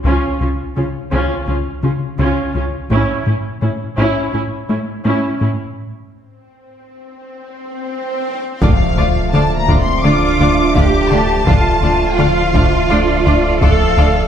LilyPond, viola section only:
\new Staff \with { instrumentName = "Viola section" } { \time 4/4 \key a \phrygian \tempo 4 = 84 <cis' eis'>8 <cis' eis'>8 <cis' eis'>8 <cis' eis'>8 <cis' eis'>8 <cis' eis'>8 <cis' eis'>8 <cis' eis'>8 | <cis' e'>8 <cis' e'>8 <cis' e'>8 <cis' e'>8 <cis' e'>8 <cis' e'>8 <cis' e'>8 <cis' e'>8 | r1 | \key d \minor <a d'>8 <a d'>8 <a d'>8 <a d'>8 <a d'>8 <a d'>8 <a d'>8 <a d'>8 |
<a d'>8 <a d'>8 <a d'>8 <a d'>8 <a d'>8 <a d'>8 <a d'>8 <a d'>8 | }